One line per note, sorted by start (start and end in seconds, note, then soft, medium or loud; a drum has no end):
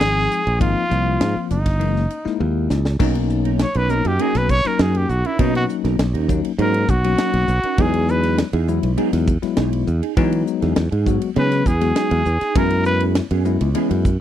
0.00 0.26 G#1 medium
0.00 0.41 F3 medium
0.00 0.41 G#3 medium
0.00 0.41 C4 medium
0.00 0.41 D#4 medium
0.00 0.61 G#4 loud
0.00 snare medium
0.00 ride medium
0.31 hi-hat pedal medium
0.31 ride soft
0.47 0.59 A#1 medium
0.47 ride soft
0.60 0.74 G#1 medium
0.60 0.83 F3 medium
0.60 0.83 A#3 medium
0.60 0.83 C4 medium
0.60 0.83 D#4 medium
0.60 1.47 F4 medium
0.60 kick loud
0.60 ride medium
0.89 1.16 C2 medium
0.89 1.56 F3 medium
0.89 1.57 A#3 medium
0.89 1.57 C4 medium
0.89 1.57 F4 medium
0.89 hi-hat pedal medium
0.89 ride medium
1.21 1.34 G#2 medium
1.21 snare loud
1.21 ride medium
1.36 muted fingered electric bass stroke soft
1.51 1.81 G1 medium
1.51 2.37 D#4 medium
1.51 hi-hat pedal medium
1.51 ride medium
1.66 kick medium
1.66 snare soft
1.66 ride medium
1.79 2.06 F#1 medium
1.79 2.02 E3 medium
1.79 2.02 G#3 medium
1.79 2.02 A#3 medium
1.79 2.02 D#4 medium
1.79 ride medium
1.96 snare soft
2.10 2.17 A#3 soft
2.10 2.18 C#4 soft
2.10 hi-hat pedal medium
2.10 ride medium
2.25 2.80 G#3 medium
2.25 2.81 A#3 medium
2.25 2.81 D#4 medium
2.25 2.80 E4 medium
2.25 muted fingered electric bass stroke soft
2.25 snare soft
2.40 2.67 D#2 medium
2.40 high tom soft
2.70 2.97 C#2 medium
2.70 snare medium
2.70 hi-hat pedal medium
2.85 snare medium
2.99 3.63 B1 medium
2.99 3.66 F#3 loud
2.99 3.16 F#3 medium
2.99 3.66 A#3 medium
2.99 3.66 C#4 medium
2.99 3.15 C#4 medium
2.99 3.66 D#4 loud
2.99 3.15 D#4 medium
2.99 3.14 A#4 medium
2.99 kick loud
2.99 crash medium
3.15 muted clean electric guitar stroke soft
3.15 ride medium
3.30 muted clean electric guitar stroke soft
3.30 hi-hat pedal medium
3.45 3.59 C#4 soft
3.45 3.59 D#4 soft
3.45 3.59 A#4 soft
3.45 ride medium
3.59 3.78 C#5 medium
3.59 muted clean electric guitar stroke soft
3.59 snare loud
3.59 ride medium
3.75 4.01 B1 medium
3.75 3.93 C#4 soft
3.75 3.93 D#4 soft
3.75 3.93 A#4 soft
3.75 3.92 B4 medium
3.75 ride medium
3.89 4.12 F#3 medium
3.89 4.12 A#3 medium
3.89 4.12 C#4 medium
3.89 4.12 D#4 medium
3.89 4.09 A#4 medium
3.89 hi-hat pedal medium
4.05 4.17 F#2 medium
4.05 4.23 G4 medium
4.05 muted clean electric guitar stroke soft
4.05 ride medium
4.19 4.35 F#3 medium
4.19 4.53 F#3 medium
4.19 4.53 A#3 medium
4.19 4.34 C#4 medium
4.19 4.53 C#4 medium
4.19 4.34 D#4 medium
4.19 4.53 F#4 medium
4.19 4.39 G#4 medium
4.19 4.33 A#4 medium
4.19 ride medium
4.35 4.60 B1 medium
4.35 4.52 B4 medium
4.35 snare soft
4.35 ride medium
4.49 4.68 C#5 loud
4.49 muted clean electric guitar stroke soft
4.49 kick medium
4.49 hi-hat pedal medium
4.65 5.08 F#3 medium
4.65 5.09 A#3 medium
4.65 5.09 C#4 medium
4.65 5.09 D#4 medium
4.65 4.83 A#4 medium
4.65 muted fingered electric bass stroke soft
4.65 snare soft
4.65 ride medium
4.78 5.05 F#2 medium
4.78 4.94 F#3 soft
4.78 4.94 C#4 soft
4.78 4.93 D#4 medium
4.78 4.98 G#4 medium
4.78 4.93 A#4 medium
4.78 snare loud
4.78 ride medium
4.94 5.11 G4 medium
4.94 muted clean electric guitar stroke soft
4.94 ride medium
5.08 5.22 B1 medium
5.08 5.28 F#4 medium
5.08 muted clean electric guitar stroke soft
5.08 hi-hat pedal medium
5.24 5.32 C#4 soft
5.24 5.39 C#4 soft
5.24 5.39 D#4 soft
5.24 5.42 E4 medium
5.24 5.32 F#4 soft
5.24 5.39 A#4 soft
5.24 ride medium
5.39 5.64 B2 medium
5.39 5.54 F#3 medium
5.39 6.06 F#3 medium
5.39 6.06 A#3 medium
5.39 6.05 C#4 medium
5.39 5.54 C#4 medium
5.39 5.53 D#4 medium
5.39 6.06 D#4 loud
5.39 5.55 D#4 medium
5.39 5.53 A#4 medium
5.39 kick loud
5.39 ride medium
5.54 5.65 F#4 medium
5.54 muted clean electric guitar stroke soft
5.54 ride medium
5.69 muted clean electric guitar stroke soft
5.69 hi-hat pedal medium
5.84 5.97 B1 medium
5.84 5.97 C#4 soft
5.84 5.97 D#4 soft
5.84 5.97 A#4 medium
5.84 snare soft
5.84 ride medium
5.98 6.12 B1 medium
5.98 muted clean electric guitar stroke soft
5.98 snare loud
5.98 ride medium
6.13 6.39 D#2 medium
6.13 6.32 C#4 soft
6.13 6.32 D#4 medium
6.13 6.31 A#4 medium
6.13 ride medium
6.29 6.51 F#3 medium
6.29 6.51 A#3 medium
6.29 6.51 C#4 medium
6.29 6.51 D#4 medium
6.29 kick medium
6.29 hi-hat pedal medium
6.44 muted clean electric guitar stroke soft
6.44 ride medium
6.58 6.84 G#2 medium
6.58 6.74 F#3 medium
6.58 6.92 F#3 medium
6.58 6.92 A#3 medium
6.58 6.73 C#4 medium
6.58 6.92 C#4 medium
6.58 6.73 D#4 medium
6.58 6.92 F#4 medium
6.58 6.73 A#4 medium
6.58 6.91 A#4 medium
6.58 ride medium
6.74 muted clean electric guitar stroke soft
6.74 ride medium
6.88 7.14 B1 medium
6.88 7.83 F#4 medium
6.88 muted clean electric guitar stroke soft
6.88 kick medium
6.88 hi-hat pedal medium
7.04 7.48 F#3 medium
7.04 7.48 A#3 medium
7.04 7.48 C#4 medium
7.04 7.48 F#4 medium
7.04 ride medium
7.18 7.34 F#3 soft
7.18 7.32 C#4 medium
7.18 7.32 D#4 medium
7.18 7.32 A#4 medium
7.18 snare loud
7.18 ride medium
7.33 7.46 B1 medium
7.33 muted clean electric guitar stroke soft
7.33 ride medium
7.48 7.61 B1 medium
7.48 muted clean electric guitar stroke soft
7.48 hi-hat pedal medium
7.63 7.71 C#4 soft
7.63 7.78 C#4 soft
7.63 7.78 D#4 soft
7.63 7.71 D#4 soft
7.63 7.78 A#4 soft
7.63 ride medium
7.78 8.41 E2 medium
7.78 8.44 F#3 medium
7.78 8.45 G#3 medium
7.78 7.94 B3 medium
7.78 8.45 B3 medium
7.78 7.93 D#4 medium
7.78 8.45 D#4 loud
7.78 7.93 G#4 medium
7.78 8.12 G#4 medium
7.78 kick loud
7.78 ride medium
7.94 ride medium
8.08 8.39 B4 medium
8.08 hi-hat pedal medium
8.23 8.36 D#4 soft
8.23 8.37 G#4 soft
8.23 snare soft
8.23 ride medium
8.38 snare loud
8.38 ride medium
8.53 8.78 E2 medium
8.53 8.71 D#4 soft
8.53 8.71 G#4 medium
8.53 ride medium
8.68 8.90 F#3 medium
8.68 8.90 G#3 medium
8.68 8.90 B3 medium
8.68 8.90 E4 loud
8.68 hi-hat pedal medium
8.83 8.95 B1 medium
8.83 muted clean electric guitar stroke medium
8.83 ride medium
8.97 9.31 F#3 medium
8.97 9.31 G#3 medium
8.97 9.12 B3 medium
8.97 9.31 B3 medium
8.97 9.12 D#4 medium
8.97 9.31 D#4 medium
8.97 9.11 G#4 loud
8.97 ride medium
9.12 9.38 E2 medium
9.12 muted clean electric guitar stroke soft
9.12 snare soft
9.12 ride medium
9.27 muted clean electric guitar stroke soft
9.27 kick medium
9.27 hi-hat pedal medium
9.42 9.86 F#3 medium
9.42 9.86 G#3 medium
9.42 9.86 B3 medium
9.42 9.86 E4 medium
9.42 muted fingered electric bass stroke soft
9.42 snare soft
9.42 ride medium
9.57 9.83 B1 medium
9.57 9.72 B3 medium
9.57 9.72 D#4 medium
9.57 9.71 G#4 medium
9.57 snare loud
9.57 ride medium
9.72 muted clean electric guitar stroke soft
9.72 ride medium
9.87 10.00 E2 medium
9.87 muted clean electric guitar stroke soft
9.87 hi-hat pedal medium
10.02 10.09 B3 soft
10.02 10.10 C#4 soft
10.02 10.16 D#4 soft
10.02 10.16 G#4 medium
10.02 ride medium
10.16 10.42 E3 medium
10.16 10.83 F#3 loud
10.16 10.83 G#3 loud
10.16 10.32 B3 medium
10.16 10.83 B3 loud
10.16 10.32 D#4 medium
10.16 10.83 D#4 loud
10.16 10.31 G#4 medium
10.16 kick loud
10.16 ride medium
10.32 muted clean electric guitar stroke soft
10.32 ride medium
10.47 muted clean electric guitar stroke soft
10.47 hi-hat pedal medium
10.61 10.75 E2 medium
10.61 10.75 D#4 soft
10.61 10.75 G#4 medium
10.61 snare soft
10.61 ride soft
10.76 10.90 E2 medium
10.76 muted clean electric guitar stroke soft
10.76 snare loud
10.76 ride medium
10.91 11.17 G#2 medium
10.91 11.10 D#4 soft
10.91 11.09 G#4 medium
10.91 ride medium
11.06 11.29 F#3 medium
11.06 11.29 G#3 medium
11.06 11.29 B3 medium
11.06 11.29 F#4 medium
11.06 kick medium
11.06 hi-hat pedal medium
11.21 muted clean electric guitar stroke soft
11.21 ride medium
11.35 11.62 C#3 medium
11.35 11.70 F#3 medium
11.35 11.70 G#3 medium
11.35 11.51 B3 medium
11.35 11.70 B3 medium
11.35 11.70 C#4 medium
11.35 11.51 D#4 medium
11.35 11.50 G#4 medium
11.35 11.68 B4 medium
11.35 ride medium
11.52 muted clean electric guitar stroke soft
11.52 snare soft
11.52 ride medium
11.66 11.91 E2 medium
11.66 12.59 G#4 medium
11.66 muted clean electric guitar stroke soft
11.66 kick medium
11.66 hi-hat pedal medium
11.81 12.25 F#3 medium
11.81 12.25 G#3 medium
11.81 12.25 B3 medium
11.81 12.25 F#4 medium
11.81 snare soft
11.81 ride medium
11.95 12.11 B3 medium
11.95 12.11 D#4 medium
11.95 12.11 G#4 medium
11.95 snare loud
11.95 ride medium
12.11 12.24 E2 medium
12.11 muted clean electric guitar stroke soft
12.11 ride medium
12.25 12.39 E2 medium
12.25 muted clean electric guitar stroke soft
12.25 hi-hat pedal medium
12.41 12.48 B3 soft
12.41 12.49 D#4 soft
12.41 12.56 D#4 soft
12.41 12.55 G#4 soft
12.41 muted fingered electric bass stroke soft
12.41 snare soft
12.41 ride medium
12.55 13.19 F#2 medium
12.55 12.71 E3 medium
12.55 13.22 G#3 medium
12.55 13.22 B3 medium
12.55 12.71 B3 medium
12.55 13.22 C#4 medium
12.55 12.71 C#4 medium
12.55 13.22 E4 loud
12.55 12.70 G#4 medium
12.55 12.85 A#4 medium
12.55 kick loud
12.55 ride medium
12.70 muted clean electric guitar stroke soft
12.70 ride medium
12.85 13.04 B4 medium
12.85 muted clean electric guitar stroke soft
12.85 hi-hat pedal medium
13.00 13.15 B3 soft
13.00 13.15 C#4 soft
13.00 13.16 G#4 soft
13.00 ride medium
13.15 muted clean electric guitar stroke soft
13.15 snare loud
13.15 ride medium
13.31 13.56 F#2 medium
13.31 13.49 B3 soft
13.31 13.49 C#4 medium
13.31 13.49 G#4 medium
13.31 ride medium
13.45 13.68 G#3 medium
13.45 13.68 B3 medium
13.45 13.68 C#4 medium
13.45 13.68 E4 medium
13.45 hi-hat pedal medium
13.61 13.73 C#2 medium
13.61 muted clean electric guitar stroke medium
13.61 ride medium
13.75 13.91 E3 medium
13.75 14.08 G#3 medium
13.75 14.08 B3 medium
13.75 13.91 B3 medium
13.75 14.09 C#4 medium
13.75 13.90 C#4 medium
13.75 14.09 E4 medium
13.75 13.90 G#4 medium
13.75 ride medium
13.91 14.16 F#2 medium
13.91 muted clean electric guitar stroke soft
13.91 ride medium
14.05 muted clean electric guitar stroke soft
14.05 kick medium
14.05 hi-hat pedal medium